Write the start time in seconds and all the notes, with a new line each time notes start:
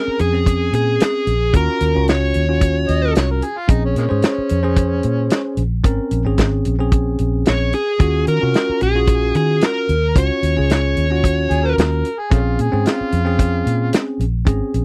Already playing: C4 C#4 G#4 A#4
0.08 muted fingered electric bass stroke
0.19 F2 G#4, closed hi-hat
0.33 C4 C#4 G#4
0.46 kick, closed hi-hat
0.73 A#2 G#4, closed hi-hat
1.00 G#4, snare, closed hi-hat
1.27 A#1, closed hi-hat
1.53 D#2 C#4 F4 F#4 A#4, kick, closed hi-hat
1.80 D#2, closed hi-hat
1.95 C#2 C#4 F4 F#4
2.08 C#5, snare, closed hi-hat
2.34 D#2, closed hi-hat
2.49 C#4 F4 F#4
2.61 kick, closed hi-hat
2.88 D#2 D#5, closed hi-hat
3.15 C2 C#5, snare, closed hi-hat
3.31 A#4
3.42 G#4, closed hi-hat
3.58 F4
3.68 A#1 C4 C#4 D#4 G#4, kick, closed hi-hat
3.85 C#4
3.96 A#2 G#3 A#3 C#4, closed hi-hat
4.09 G#2 C#4 G#4 C5
4.22 snare, closed hi-hat
4.38 muted fingered electric bass stroke
4.49 F2, closed hi-hat
4.63 C#4 G#4 C5
4.76 kick, closed hi-hat
5.03 A#2, closed hi-hat
5.30 snare, closed hi-hat
5.57 A#1, closed hi-hat
5.84 G#1 C4 C#4 A#4, kick, closed hi-hat
6.11 A#1, closed hi-hat
6.25 G#1 C4 C#4 G#4
6.38 kick, snare, closed hi-hat
6.65 A#1, closed hi-hat
6.79 C4 C#4 G#4
6.92 kick, closed hi-hat
7.19 A#1, closed hi-hat
7.45 A#1 C#5, snare, closed hi-hat
7.73 G#4, closed hi-hat
7.99 D#2 C#4 F4 F#4, kick, closed hi-hat
8.27 D#3 A#4, closed hi-hat
8.41 C3 C#4 F4 F#4
8.54 snare, closed hi-hat
8.69 muted fingered electric bass stroke
8.81 A#1 G#4, closed hi-hat
8.95 C#4 F4 F#4
9.07 kick, closed hi-hat
9.35 D#3 G#4, closed hi-hat
9.61 snare, closed hi-hat
9.66 A#4
9.89 D#2, closed hi-hat
10.16 C#2 C#4 F4 F#4 C#5, kick, closed hi-hat
10.43 D#2, closed hi-hat
10.57 C#2 C#4 F4 G#4
10.70 C#5, snare, closed hi-hat
10.97 D#2, closed hi-hat
11.10 C#4 F4 F#4
11.24 kick, closed hi-hat
11.50 D#2 G#4, closed hi-hat
11.64 A#4
11.78 D#2, snare, closed hi-hat
12.05 closed hi-hat
12.19 G#4
12.31 A#1 A3 C4 C#4 F4 G#4, kick, closed hi-hat
12.59 A#2 G#4, closed hi-hat
12.72 G#2 C4 C#4 G#4
12.86 F4, snare, closed hi-hat
13.01 muted fingered electric bass stroke
13.12 F2, closed hi-hat
13.25 C4 C#4 G#4
13.39 kick, closed hi-hat
13.66 A#2, closed hi-hat
13.93 snare, closed hi-hat
14.20 A#1, closed hi-hat
14.45 G#1 C4 C#4 G#4, kick, closed hi-hat
14.74 A#1, closed hi-hat